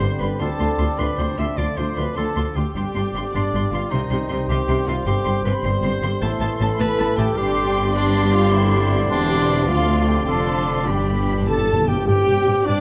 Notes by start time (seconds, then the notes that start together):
Already playing: G2 D3 G3 C4 D4 G4 C5 C6
0.00 G1 G2 D4 G4 D5 C6
0.19 G1 G2 D4 G4 B4 B5 C6
0.40 D2 D3 D4 F4 A4 D5 A5 C6
0.59 D2 D4 F4 C6
0.78 D2 D4 F4 C6
0.98 D2 D4 F4 B4 C5 B5 C6
1.17 D2 D4 F4 C5 C6
1.37 D2 D4 F4 C5 E5 C6 E6
1.57 D2 F3 A3 D4 F4 D5 C6 D6
1.77 D2 D4 F4 C5 C6
1.96 D2 D4 F4 B4 B5 C6
2.16 D2 D4 F4 A4 C5 A5 C6
2.36 D2 D4 F4 C6
2.55 D2 D4 F4 G4 G5 C6
2.74 G1 G2 G3 C4 D4 G4 D5 G5 C6
2.78 D3
2.95 G1 G2 D4 G4 C6
3.15 G1 G2 D4 G4 C6
3.32 G1 G2 D4 G4 D5 C6
3.53 G1 G2 D4 G4 C6
3.72 G1 G2 D4 F4 G4 F5 C6
3.91 C2 C3 D#3 C4 D#4 G4 C5 D#5 C6
4.10 C2 C3 C4 G4 C6
4.29 C2 C3 C4 G4 C6
4.49 C2 C3 C4 G4 G5 C6
4.68 C2 C3 C4 G4 C6
4.87 C2 C3 C4 F4 G4 F5 C6
5.06 G1 G2 D3 C4 G4 G5 C6
5.25 G1 G2 C4 G4 C6
5.45 G1 G2 C4 G4 B4 B5 C6
5.64 G1 G2 C4 G4 C5 C6
5.82 G1 G2 C4 G4 C6
6.02 G1 G2 C4 G4 C6
6.21 A1 A2 E3 A3 B3 E4 A4 A5
6.40 A1 A2 B3 E4 A5
6.59 A1 A2 B3 E4 A5
6.79 A1 A2 B3 E4 A4 B4 A5 B5
6.98 A1 A2 B3 E4 B4 A5
7.17 A1 A2 B3 E4 G4 A4 G5 A5
7.36 G1 G2 D3 G3 C4 D4 G4 D5 G5 C6
7.94 D4 G4 C5 D5 C6
8.32 F4 F5
8.52 D3 E4 E5
8.72 D4
8.92 G4
9.10 E1 E2 D4 G4 D5 C6
9.67 D2 D3 F3 D4 F4 F5 C6
9.88 D4
10.07 F4 G4 G5
10.27 F1 F2 D4 F4 A4 C5 A5 C6
10.68 C5
10.86 G1 G2 G3 B3 D4 G4 G5 B5
10.95 G2
11.03 G2
11.10 G2
11.18 G2
11.26 G2
11.34 G2
11.42 G2
11.47 G2 A4 B4 A5
11.57 G2
11.64 G2 D5
11.73 G2
11.80 G2
11.87 G2 G4 G5
11.95 G2
12.06 G2 G3 C4 G4 G5
12.28 G2
12.47 G2
12.65 G2 D4 D5